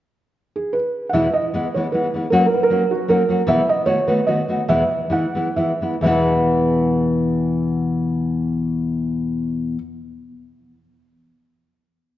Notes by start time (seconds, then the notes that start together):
0.56 G#4
0.73 B4
1.09 E2 B2 E5 F#5
1.14 E3 G#3 B3 E4
1.33 D#5
1.53 E3 G#3 B3 E4
1.75 E3 G#3 B3 E4 C#5
1.92 E3 G#3 B3 E4 B4
2.14 E3 G#3 B3 E4
2.30 F#3 A#3 C#4 F#4 A#4
2.38 B4
2.46 A#4
2.54 B4
2.63 A#4
2.70 F#3 A#3 C#4 F#4
2.91 F#4
3.08 F#3 A#3 C#4 F#4 A#4
3.29 F#3 A#3 C#4 F#4
3.46 B2 E3 G#3 B3 E4 E5
3.69 D#5
3.85 D#3 A3 B3 F#4 C#5
4.07 D#3 A3 B3 F#4 B4
4.27 D#3 A3 B3 F#4 D#5
4.48 D#3 A3 B3 F#4
4.68 E2 B2 E3 G#3 B3 E4 E5
5.10 E3 G#3 B3 E4 F#5
5.35 E3 G#3 B3 E4
5.56 E3 G#3 B3 E4 E5
5.81 E3 G#3 B3 E4
6.01 E2 B2 E3 G#3 E5
6.06 B3 E4